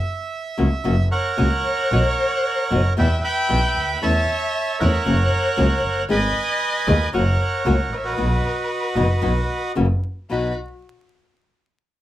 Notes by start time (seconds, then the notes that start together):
Already playing: E5
0.57 C#2 C#3 F#3 A#3 C#4 F#4
0.84 F#1 C#3 F#3 A#3 C#4 F#4
1.11 A#4 C#5 F#5
1.37 C#2 C#3 F#3 A#3 C#4 F#4
1.91 B1 B2 F#3 B3 D#4 F#4
2.70 F#1 B2 F#3 B3 D#4 F#4
2.97 E2 B2 E3 G3 B3 E4 B4 E5 G5
3.24 E5 G5 B5
3.49 B1 B2 E3 G3 B3 E4
3.77 D2
4.02 E2 E3 A3 C#4 E4 C#5 E5 A5
4.79 E2 E3 A3 C#4 E4 A#4 C#5 F#5
5.05 F#1 C#3 F#3 A#3 C#4 F#4
5.57 C#2 C#3 F#3 A#3 C#4 F#4
5.84 F#1
6.09 G#1 D#3 G#3 B3 D#4 G#4 B4 D#5 G#5
6.87 D#2 D#3 G#3 B3 D#4 G#4
7.13 F#1 C#3 F#3 A#3 C#4 F#4 A#4 C#5 F#5
7.65 C#2 C#3 F#3 A#3 C#4 F#4
7.91 A1 B4 D#5
7.97 C#5 E5
8.04 F#4 B4 D#5
8.17 B1 B2 F#3 B3 D#4 F#4
8.96 F#1 B2 F#3 B3 D#4 F#4
9.22 B1 B2 F#3 B3 D#4 F#4
9.75 F#1 C#3 E3 A#3 C#4 F#4
10.30 B1 B2 F#3 B3 D#4 F#4 B4